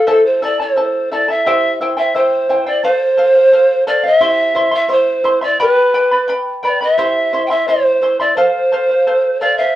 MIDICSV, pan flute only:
0, 0, Header, 1, 2, 480
1, 0, Start_track
1, 0, Tempo, 691244
1, 53, Time_signature, 2, 2, 24, 8
1, 6774, End_track
2, 0, Start_track
2, 0, Title_t, "Pan flute"
2, 0, Program_c, 0, 75
2, 54, Note_on_c, 0, 69, 95
2, 175, Note_on_c, 0, 72, 84
2, 186, Note_off_c, 0, 69, 0
2, 298, Note_on_c, 0, 74, 95
2, 309, Note_off_c, 0, 72, 0
2, 416, Note_off_c, 0, 74, 0
2, 423, Note_on_c, 0, 72, 77
2, 753, Note_off_c, 0, 72, 0
2, 777, Note_on_c, 0, 74, 92
2, 887, Note_off_c, 0, 74, 0
2, 903, Note_on_c, 0, 76, 105
2, 1187, Note_off_c, 0, 76, 0
2, 1372, Note_on_c, 0, 76, 100
2, 1484, Note_off_c, 0, 76, 0
2, 1499, Note_on_c, 0, 72, 99
2, 1831, Note_off_c, 0, 72, 0
2, 1855, Note_on_c, 0, 74, 102
2, 1965, Note_off_c, 0, 74, 0
2, 1970, Note_on_c, 0, 72, 122
2, 2663, Note_off_c, 0, 72, 0
2, 2688, Note_on_c, 0, 74, 103
2, 2801, Note_off_c, 0, 74, 0
2, 2819, Note_on_c, 0, 75, 114
2, 2903, Note_off_c, 0, 75, 0
2, 2903, Note_on_c, 0, 76, 114
2, 3267, Note_off_c, 0, 76, 0
2, 3295, Note_on_c, 0, 76, 101
2, 3405, Note_off_c, 0, 76, 0
2, 3417, Note_on_c, 0, 72, 95
2, 3749, Note_off_c, 0, 72, 0
2, 3772, Note_on_c, 0, 74, 100
2, 3883, Note_off_c, 0, 74, 0
2, 3894, Note_on_c, 0, 71, 111
2, 4398, Note_off_c, 0, 71, 0
2, 4621, Note_on_c, 0, 74, 92
2, 4727, Note_off_c, 0, 74, 0
2, 4740, Note_on_c, 0, 76, 110
2, 5157, Note_off_c, 0, 76, 0
2, 5182, Note_on_c, 0, 79, 73
2, 5210, Note_on_c, 0, 76, 95
2, 5220, Note_off_c, 0, 79, 0
2, 5328, Note_on_c, 0, 72, 94
2, 5338, Note_off_c, 0, 76, 0
2, 5687, Note_off_c, 0, 72, 0
2, 5691, Note_on_c, 0, 74, 89
2, 5804, Note_on_c, 0, 72, 104
2, 5814, Note_off_c, 0, 74, 0
2, 6524, Note_off_c, 0, 72, 0
2, 6528, Note_on_c, 0, 74, 93
2, 6640, Note_off_c, 0, 74, 0
2, 6644, Note_on_c, 0, 76, 114
2, 6774, Note_off_c, 0, 76, 0
2, 6774, End_track
0, 0, End_of_file